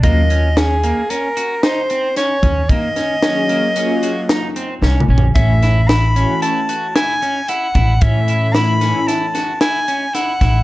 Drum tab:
HH |x--x--x--x--x--x--x--x--x--x--|x--x--x--x--x--x--x--x--------|x--x--x--x--x--x--x--x--x--x--|x--x--x--x--x--x--x--x--x--x--|
SD |------o-----------o-----o-----|---o--o-----------o-----o-----|---o--o-----------o-----------|------o--o--o--o--o-----o--o--|
T2 |------------------------------|--------------------------o---|------------------------------|------------------------------|
FT |------------------------------|----------------------------o-|------------------------------|------------------------------|
BD |o--------------------------o--|o-----------------------------|o--------------------------o--|o--------------------------o--|